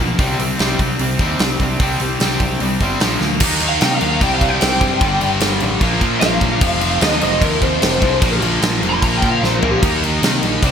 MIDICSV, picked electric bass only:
0, 0, Header, 1, 2, 480
1, 0, Start_track
1, 0, Key_signature, -3, "minor"
1, 0, Tempo, 401875
1, 217, Time_signature, 4, 2, 24, 8
1, 12797, End_track
2, 0, Start_track
2, 0, Title_t, "Picked electric bass"
2, 0, Program_c, 0, 34
2, 0, Note_on_c, 0, 35, 92
2, 166, Note_off_c, 0, 35, 0
2, 223, Note_on_c, 0, 36, 92
2, 408, Note_off_c, 0, 36, 0
2, 467, Note_on_c, 0, 36, 87
2, 651, Note_off_c, 0, 36, 0
2, 714, Note_on_c, 0, 36, 91
2, 896, Note_off_c, 0, 36, 0
2, 944, Note_on_c, 0, 36, 84
2, 1130, Note_off_c, 0, 36, 0
2, 1186, Note_on_c, 0, 36, 86
2, 1372, Note_off_c, 0, 36, 0
2, 1424, Note_on_c, 0, 39, 91
2, 1610, Note_off_c, 0, 39, 0
2, 1669, Note_on_c, 0, 36, 81
2, 1854, Note_off_c, 0, 36, 0
2, 1909, Note_on_c, 0, 36, 84
2, 2095, Note_off_c, 0, 36, 0
2, 2148, Note_on_c, 0, 36, 80
2, 2334, Note_off_c, 0, 36, 0
2, 2391, Note_on_c, 0, 36, 86
2, 2576, Note_off_c, 0, 36, 0
2, 2637, Note_on_c, 0, 36, 84
2, 2820, Note_off_c, 0, 36, 0
2, 2869, Note_on_c, 0, 36, 81
2, 3055, Note_off_c, 0, 36, 0
2, 3117, Note_on_c, 0, 36, 89
2, 3300, Note_off_c, 0, 36, 0
2, 3351, Note_on_c, 0, 31, 86
2, 3537, Note_off_c, 0, 31, 0
2, 3593, Note_on_c, 0, 34, 85
2, 3778, Note_off_c, 0, 34, 0
2, 3833, Note_on_c, 0, 38, 81
2, 4071, Note_off_c, 0, 38, 0
2, 4071, Note_on_c, 0, 39, 97
2, 4499, Note_off_c, 0, 39, 0
2, 4560, Note_on_c, 0, 48, 92
2, 4770, Note_off_c, 0, 48, 0
2, 4794, Note_on_c, 0, 39, 96
2, 5006, Note_off_c, 0, 39, 0
2, 5029, Note_on_c, 0, 36, 107
2, 5457, Note_off_c, 0, 36, 0
2, 5525, Note_on_c, 0, 36, 94
2, 5732, Note_off_c, 0, 36, 0
2, 5746, Note_on_c, 0, 43, 94
2, 5962, Note_off_c, 0, 43, 0
2, 5987, Note_on_c, 0, 31, 95
2, 6202, Note_off_c, 0, 31, 0
2, 6235, Note_on_c, 0, 31, 94
2, 6447, Note_off_c, 0, 31, 0
2, 6476, Note_on_c, 0, 31, 95
2, 6687, Note_off_c, 0, 31, 0
2, 6718, Note_on_c, 0, 33, 100
2, 6928, Note_off_c, 0, 33, 0
2, 6937, Note_on_c, 0, 34, 105
2, 7156, Note_off_c, 0, 34, 0
2, 7181, Note_on_c, 0, 46, 93
2, 7398, Note_off_c, 0, 46, 0
2, 7424, Note_on_c, 0, 34, 102
2, 7640, Note_off_c, 0, 34, 0
2, 7662, Note_on_c, 0, 34, 99
2, 7878, Note_off_c, 0, 34, 0
2, 7898, Note_on_c, 0, 29, 95
2, 8329, Note_off_c, 0, 29, 0
2, 8381, Note_on_c, 0, 39, 102
2, 8597, Note_off_c, 0, 39, 0
2, 8636, Note_on_c, 0, 29, 96
2, 8845, Note_off_c, 0, 29, 0
2, 8853, Note_on_c, 0, 39, 99
2, 9286, Note_off_c, 0, 39, 0
2, 9345, Note_on_c, 0, 29, 97
2, 9559, Note_off_c, 0, 29, 0
2, 9581, Note_on_c, 0, 36, 101
2, 9797, Note_off_c, 0, 36, 0
2, 9815, Note_on_c, 0, 34, 93
2, 10033, Note_off_c, 0, 34, 0
2, 10054, Note_on_c, 0, 34, 100
2, 10272, Note_off_c, 0, 34, 0
2, 10292, Note_on_c, 0, 34, 92
2, 10510, Note_off_c, 0, 34, 0
2, 10539, Note_on_c, 0, 29, 99
2, 10754, Note_off_c, 0, 29, 0
2, 10776, Note_on_c, 0, 34, 98
2, 10992, Note_off_c, 0, 34, 0
2, 11011, Note_on_c, 0, 46, 92
2, 11230, Note_off_c, 0, 46, 0
2, 11250, Note_on_c, 0, 34, 92
2, 11468, Note_off_c, 0, 34, 0
2, 11490, Note_on_c, 0, 34, 89
2, 11708, Note_off_c, 0, 34, 0
2, 11736, Note_on_c, 0, 39, 95
2, 12165, Note_off_c, 0, 39, 0
2, 12214, Note_on_c, 0, 48, 100
2, 12429, Note_off_c, 0, 48, 0
2, 12451, Note_on_c, 0, 34, 90
2, 12667, Note_off_c, 0, 34, 0
2, 12689, Note_on_c, 0, 36, 101
2, 12797, Note_off_c, 0, 36, 0
2, 12797, End_track
0, 0, End_of_file